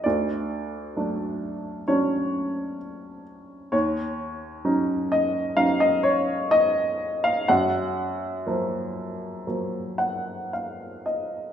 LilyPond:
<<
  \new Staff \with { instrumentName = "Upright piano" } { \time 4/4 \key dis \minor \tempo 4 = 64 << { r1 | r1 | r2 r8 fis''8 eis''8 dis''8 | } \\ { d''2 cis''4. r8 | cis''4. dis''8 eis''16 dis''16 cis''8 dis''8. eis''16 | fis''2. r4 | } >> }
  \new Staff \with { instrumentName = "Upright piano" } { \clef bass \time 4/4 \key dis \minor d,4 <fis a d'>4 <fis cis' d'>4 r4 | dis,4 <fis cis' dis'>4 <fis cis' dis'>4 r4 | fis,4 <eis fis ais>4 <eis fis ais>4 r4 | }
>>